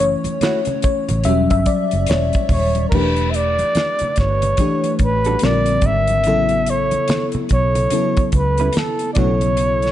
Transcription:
0.00 0.14 F#1 loud
0.00 0.17 E3 medium
0.00 0.17 A3 medium
0.00 0.18 C#4 medium
0.00 0.83 C#5 medium
0.00 closed hi-hat medium
0.24 muted fingered electric bass stroke medium
0.24 closed hi-hat soft
0.24 high conga medium
0.41 0.59 A3 medium
0.41 0.59 E4 medium
0.41 0.60 F#4 medium
0.41 0.60 C#5 medium
0.41 snare loud
0.41 closed hi-hat medium
0.41 high conga medium
0.65 closed hi-hat soft
0.65 muted conga soft
0.65 low conga medium
0.82 1.27 C#5 loud
0.82 muted fingered electric bass stroke soft
0.82 kick medium
0.82 closed hi-hat medium
0.82 high conga soft
1.09 1.23 A1 medium
1.09 closed hi-hat medium
1.09 low conga medium
1.24 1.47 E1 loud
1.24 1.84 F#3 medium
1.24 1.84 G3 medium
1.24 1.85 C#4 medium
1.24 1.50 E5 loud
1.24 closed hi-hat medium
1.24 muted conga soft
1.24 high conga medium
1.50 1.65 G1 loud
1.50 1.67 E5 loud
1.50 kick medium
1.50 closed hi-hat medium
1.66 2.10 D5 medium
1.66 kick medium
1.66 closed hi-hat medium
1.91 2.06 F#1 medium
1.91 closed hi-hat soft
2.07 2.30 E1 loud
2.07 2.24 C#5 medium
2.07 closed hi-hat medium
2.07 muted conga soft
2.07 high conga medium
2.11 snare loud
2.33 kick medium
2.33 closed hi-hat soft
2.33 muted conga soft
2.49 2.85 D#1 loud
2.49 2.85 C#5 medium
2.49 kick loud
2.49 open hi-hat medium
2.49 low conga medium
2.75 closed hi-hat medium
2.75 high conga medium
2.89 3.62 E1 loud
2.89 4.44 E3 medium
2.89 2.96 A#4 medium
2.89 kick loud
2.89 crash loud
2.93 4.44 A3 medium
2.93 4.44 D4 medium
2.93 4.45 G4 medium
2.93 3.01 A#4 medium
2.93 3.32 B4 medium
3.01 4.48 B4 medium
3.16 closed hi-hat soft
3.16 muted conga soft
3.31 3.37 E5 medium
3.31 closed hi-hat medium
3.36 4.18 D5 loud
3.58 closed hi-hat soft
3.58 high conga medium
3.75 snare medium
3.75 closed hi-hat medium
3.75 muted conga soft
3.75 high conga medium
3.99 muted fingered electric bass stroke soft
3.99 closed hi-hat soft
3.99 muted conga soft
3.99 low conga medium
4.16 4.52 G1 medium
4.16 4.97 C#5 medium
4.16 kick medium
4.16 snare soft
4.16 closed hi-hat medium
4.16 high conga soft
4.42 closed hi-hat medium
4.42 low conga medium
4.57 5.42 E3 medium
4.57 5.42 A3 medium
4.57 5.42 D4 medium
4.57 5.43 G4 medium
4.57 5.43 C#5 medium
4.57 kick medium
4.57 closed hi-hat medium
4.57 high conga medium
4.84 closed hi-hat soft
4.84 muted conga soft
4.99 5.35 A1 medium
4.99 kick medium
4.99 closed hi-hat medium
5.03 5.46 B4 medium
5.24 5.35 G3 medium
5.24 5.35 D4 medium
5.24 5.35 F#4 medium
5.24 5.34 A4 medium
5.24 closed hi-hat soft
5.39 5.77 A#1 medium
5.39 6.18 D3 medium
5.39 6.18 G3 medium
5.39 closed hi-hat medium
5.43 6.18 C4 medium
5.43 6.19 F4 medium
5.43 6.19 A#4 medium
5.43 5.88 D5 loud
5.43 snare loud
5.43 muted conga soft
5.43 high conga soft
5.66 closed hi-hat soft
5.66 muted conga soft
5.82 6.26 G#1 medium
5.82 kick medium
5.82 closed hi-hat medium
5.82 low conga medium
5.86 6.71 E5 loud
6.07 closed hi-hat soft
6.07 high conga medium
6.24 6.95 A1 loud
6.24 7.77 C#3 medium
6.24 7.77 F#3 medium
6.24 7.77 B3 medium
6.24 7.78 E4 medium
6.24 closed hi-hat medium
6.24 muted conga soft
6.28 7.78 A4 medium
6.49 closed hi-hat soft
6.49 muted conga soft
6.66 7.28 C#5 medium
6.66 closed hi-hat medium
6.91 closed hi-hat soft
6.91 high conga medium
7.08 snare loud
7.08 closed hi-hat medium
7.08 muted conga soft
7.08 high conga medium
7.32 muted fingered electric bass stroke soft
7.32 closed hi-hat soft
7.32 muted conga soft
7.32 low conga medium
7.49 7.86 B1 medium
7.49 8.31 C#5 loud
7.49 kick medium
7.49 closed hi-hat medium
7.49 high conga soft
7.75 closed hi-hat medium
7.75 low conga medium
7.90 9.16 C#3 medium
7.90 9.16 F#3 medium
7.90 9.17 B3 medium
7.90 9.17 E4 medium
7.90 9.17 A4 medium
7.90 closed hi-hat medium
7.90 muted conga soft
7.90 high conga medium
8.17 kick medium
8.17 closed hi-hat soft
8.32 8.68 C#2 medium
8.32 8.79 B4 medium
8.32 kick medium
8.32 closed hi-hat medium
8.58 8.68 C#4 medium
8.58 8.68 E4 medium
8.58 8.68 B4 medium
8.58 closed hi-hat soft
8.62 8.69 G3 soft
8.73 closed hi-hat medium
8.73 high conga medium
8.77 9.13 A4 medium
8.77 snare loud
8.99 closed hi-hat soft
9.13 9.92 B1 loud
9.13 9.92 C#3 medium
9.13 9.30 A3 medium
9.13 9.21 D5 medium
9.13 kick loud
9.13 closed hi-hat medium
9.13 low conga medium
9.17 9.92 F#3 medium
9.17 9.92 B3 medium
9.17 9.31 D4 medium
9.17 9.92 E4 medium
9.17 9.31 F#4 medium
9.17 9.92 A4 medium
9.17 9.31 C#5 medium
9.17 9.92 C#5 medium
9.41 closed hi-hat soft
9.41 high conga medium
9.57 closed hi-hat medium
9.82 snare soft
9.82 closed hi-hat soft
9.82 muted conga soft

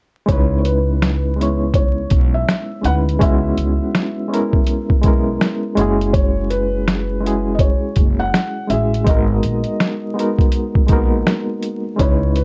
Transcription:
0.26 2.08 C#2 medium
0.26 1.26 G#3 medium
0.26 1.27 C#4 medium
0.26 1.28 D#4 medium
0.26 0.58 C#5 medium
0.26 kick loud
0.26 closed hi-hat medium
0.31 1.29 E4 medium
0.31 1.30 B4 medium
0.59 0.65 C#5 medium
0.65 1.78 B4 medium
0.65 closed hi-hat medium
1.02 finger snap medium
1.02 snare loud
1.02 closed hi-hat medium
1.36 2.69 G#3 medium
1.36 2.71 B3 medium
1.36 2.70 C#4 medium
1.41 2.72 E4 medium
1.41 2.73 C#5 medium
1.41 closed hi-hat medium
1.74 2.36 C#5 medium
1.74 kick medium
1.74 closed hi-hat medium
2.10 2.43 B1 medium
2.10 kick medium
2.10 closed hi-hat medium
2.34 2.86 E5 medium
2.49 finger snap medium
2.49 snare loud
2.49 closed hi-hat medium
2.81 3.17 D2 loud
2.81 3.16 G#3 medium
2.81 3.17 C#4 medium
2.81 3.18 D#4 medium
2.81 closed hi-hat medium
2.85 3.18 E4 medium
2.85 3.19 B4 medium
2.85 2.94 F#5 loud
3.09 closed hi-hat soft
3.19 3.53 C#2 loud
3.19 4.19 G#3 medium
3.19 4.21 B3 medium
3.19 4.20 C#4 medium
3.19 5.74 E5 medium
3.19 kick loud
3.19 closed hi-hat medium
3.23 4.21 E4 medium
3.23 4.22 F#4 medium
3.58 3.77 C#2 medium
3.58 closed hi-hat medium
3.95 finger snap medium
3.95 snare loud
3.95 closed hi-hat medium
4.28 4.95 G#3 medium
4.28 4.97 B3 medium
4.28 4.96 C#4 medium
4.33 4.98 E4 medium
4.33 4.99 A#4 loud
4.33 closed hi-hat medium
4.53 kick medium
4.67 closed hi-hat medium
4.90 kick medium
5.01 5.36 B1 medium
5.01 5.74 G#3 medium
5.01 5.77 B3 medium
5.01 5.75 C#4 medium
5.01 kick medium
5.01 closed hi-hat medium
5.06 5.77 E4 medium
5.06 5.79 A#4 medium
5.41 finger snap medium
5.41 snare loud
5.41 closed hi-hat medium
5.75 7.70 F#1 medium
5.75 7.08 G#3 medium
5.75 7.09 C#4 medium
5.75 7.10 E4 medium
5.75 closed hi-hat medium
5.80 7.11 F#4 medium
5.80 7.12 G#4 loud
6.01 closed hi-hat soft
6.13 6.51 C#5 medium
6.13 kick loud
6.13 closed hi-hat medium
6.50 7.58 B4 loud
6.50 closed hi-hat medium
6.88 finger snap medium
6.88 snare loud
6.88 closed hi-hat medium
7.21 8.54 G#3 medium
7.21 8.55 C#4 medium
7.21 8.56 E4 medium
7.25 8.57 F#4 medium
7.25 8.58 G#4 medium
7.25 closed hi-hat medium
7.55 7.60 D#5 medium
7.59 8.21 C#5 medium
7.59 kick medium
7.59 closed hi-hat medium
7.96 8.29 F#1 loud
7.96 kick medium
7.96 closed hi-hat medium
8.19 8.72 F#5 loud
8.34 finger snap medium
8.34 snare loud
8.34 closed hi-hat medium
8.67 9.02 A1 medium
8.67 9.02 G#3 medium
8.67 9.02 C#4 medium
8.67 9.03 E4 medium
8.67 9.08 E5 loud
8.67 closed hi-hat medium
8.72 9.04 F#4 medium
8.72 9.05 G#4 medium
8.94 closed hi-hat soft
9.04 9.39 G#1 loud
9.04 10.05 G#3 medium
9.04 10.05 B3 medium
9.04 10.06 D#4 medium
9.04 11.59 D#5 medium
9.04 kick loud
9.04 closed hi-hat medium
9.09 10.07 F#4 medium
9.09 10.08 A#4 loud
9.43 closed hi-hat medium
9.64 closed hi-hat soft
9.80 finger snap medium
9.80 snare loud
9.80 closed hi-hat medium
10.14 10.81 G#3 medium
10.14 10.82 B3 medium
10.14 10.83 D#4 medium
10.19 10.84 F#4 medium
10.19 10.84 A#4 medium
10.19 closed hi-hat medium
10.39 kick medium
10.39 closed hi-hat soft
10.52 closed hi-hat medium
10.75 kick medium
10.87 11.21 A#1 medium
10.87 11.87 G#3 medium
10.87 10.97 A#3 medium
10.87 11.89 D#4 medium
10.87 kick medium
10.87 closed hi-hat medium
10.91 11.91 B3 medium
10.91 11.90 F#4 medium
10.91 11.90 A#4 medium
11.27 finger snap medium
11.27 snare loud
11.27 closed hi-hat medium
11.62 closed hi-hat medium
11.96 12.44 C#2 loud
11.96 12.44 G#3 medium
11.96 12.44 C#4 medium
11.96 12.44 D#4 medium
11.96 kick loud
11.96 closed hi-hat medium
12.01 12.44 E4 medium
12.01 12.44 B4 medium
12.01 12.38 C#5 medium
12.36 12.44 B4 medium
12.36 closed hi-hat medium

